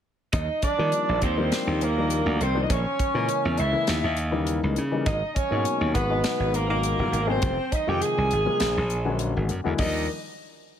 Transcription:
0.33 slap bass D#2, tenor saxophone D#4, overdriven electric guitar D#5, kick, closed hi-hat
0.62 tenor saxophone D4, overdriven electric guitar D5, muted slap bass stroke, kick, closed hi-hat
0.78 grand piano D#3 F3 G3 A#3 D4, slap bass D#3
0.92 closed hi-hat
1.09 slap bass A#1
1.22 slap bass D#2, tenor saxophone C4, overdriven electric guitar C5, kick, closed hi-hat
1.37 grand piano D#3 F3 G3 A#3 D4
1.52 snare, closed hi-hat
1.67 slap bass D#2
1.81 tenor saxophone A#3, overdriven electric guitar A#4, closed hi-hat
1.97 grand piano D#3 F3 G3 A#3 D4
2.10 closed hi-hat
2.26 slap bass D2
2.40 slap bass C2, tenor saxophone C4, overdriven electric guitar C5, closed hi-hat
2.55 grand piano D#3 F3 G3 A#3 D4
2.63 tenor saxophone D#4, overdriven electric guitar D#5
2.70 slap bass A#1, tenor saxophone C#4, overdriven electric guitar C#5, kick, closed hi-hat
2.99 muted slap bass stroke, kick, closed hi-hat
3.14 slap bass A#2, grand piano C#3 E3 G#3 A#3 C#4
3.29 closed hi-hat
3.45 slap bass E2
3.58 slap bass C#2, tenor saxophone E4, overdriven electric guitar E5, closed hi-hat
3.72 grand piano C#3 E3 G#3 A#3 C#4
3.87 slap bass D#2, snare, closed hi-hat
4.04 slap bass D#2
4.17 closed hi-hat
4.31 grand piano C#3 E3 G3 A#3 D#4
4.47 closed hi-hat
4.63 slap bass C#2
4.76 slap bass C#3, closed hi-hat
4.91 grand piano C#3 E3 G3 A#3 D#4
5.06 slap bass G#1, tenor saxophone D#4, overdriven electric guitar D#5, kick, closed hi-hat
5.35 tenor saxophone C#4, overdriven electric guitar C#5, kick, closed hi-hat
5.50 slap bass G#2, grand piano B2 F#3 G#3 A#3 D#4
5.65 closed hi-hat
5.81 slap bass D#2
5.94 slap bass G#1, tenor saxophone B3, overdriven electric guitar B4, kick, closed hi-hat
6.10 grand piano B2 F#3 G#3 B3 D#4
6.24 snare, closed hi-hat
6.40 slap bass G#1
6.54 tenor saxophone A#3, overdriven electric guitar A#4, closed hi-hat
6.68 grand piano B2 F#3 G#3 A#3 D#4, tenor saxophone A#3, overdriven electric guitar A#4
6.83 closed hi-hat
6.99 slap bass F#1
7.12 slap bass G#1, closed hi-hat
7.26 grand piano B2 F#3 G#3 A#3 C#4, tenor saxophone C4
7.32 overdriven electric guitar C5
7.42 slap bass F1, kick, closed hi-hat
7.72 tenor saxophone D#4, overdriven electric guitar D#5, muted slap bass stroke, kick, closed hi-hat
7.87 slap bass F2, grand piano C3 D#3 F3 G#3 D#4, tenor saxophone G4, overdriven electric guitar G5
8.02 tenor saxophone G#4, closed hi-hat
8.06 overdriven electric guitar G#5
8.18 slap bass C2
8.31 slap bass G#1, closed hi-hat
8.45 grand piano C3 F3 G3 G#3 A#3
8.60 slap bass A#1, snare, closed hi-hat
8.77 slap bass A#1
8.90 closed hi-hat
9.05 grand piano D3 F#3 G#3 A#3 C#4
9.19 closed hi-hat
9.36 slap bass G#1
9.49 slap bass F#2, closed hi-hat
9.64 slap bass E2, grand piano D3 F#3 G#3 A#3 E4
9.78 slap bass D#2, grand piano D#3 F3 G3 A#3 D4, tenor saxophone D#4, overdriven electric guitar D#5, kick, open hi-hat

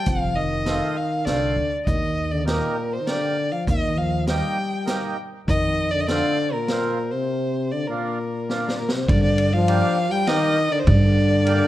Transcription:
0.06 upright bass F1, trombone F3, violin F5, kick, closed hi-hat
0.35 trombone D#3, violin D#5
0.65 accordion A3 C4 F4, snare, closed hi-hat
0.97 violin F5
1.25 upright bass C2, trombone D3, accordion A3 C4 F4, violin D5, snare, closed hi-hat
1.56 upright bass D2
1.85 upright bass D#2, trombone D#3, violin D#5, kick, closed hi-hat
2.31 trombone D3, violin D5
2.45 trombone A#2, accordion A#3 D#4 G4, violin A#4, snare, closed hi-hat
2.92 violin C5
3.00 trombone D#3
3.06 trombone D3, accordion A#3 G4, violin D5, snare, closed hi-hat
3.52 trombone F3, violin F5
3.67 upright bass D#2, trombone D#3, violin D#5, kick, closed hi-hat
3.97 trombone F3, violin F5
4.27 trombone G3, accordion A#3 D#4 G4, violin G5, snare, closed hi-hat
4.85 accordion A#3 D#4 G4, snare, closed hi-hat
5.48 upright bass F2, trombone D#3, violin D#5, kick, closed hi-hat
5.91 trombone D3, violin D5
6.00 violin D#5
6.06 trombone D3, accordion A3 C4 F4, violin D5, snare, closed hi-hat
6.52 trombone A#2, violin A#4
6.68 accordion F3 C4 F4, snare, closed hi-hat
7.11 trombone C3, violin C5
7.71 trombone D3, violin D5
7.87 trombone A#2, accordion A#3 D4 F4, violin A#4
8.49 accordion A#3 D4 F4, snare
8.68 snare
8.78 trombone A#2, violin A#4
8.89 snare
8.93 trombone C3, violin C5
9.08 upright bass G2, trombone D3, violin D5, kick, ride
9.23 violin D5
9.38 ride
9.53 trombone F3, violin F5
9.67 accordion A#3 D4 G4, ride
10.11 trombone G3, violin G5
10.27 trombone D#3, accordion A#3 G4, violin D#5, snare, ride
10.71 trombone D3, violin D5
10.79 violin C5
10.85 upright bass G2, trombone D3, violin D5, kick, ride
11.45 accordion A#3 D4 G4, ride

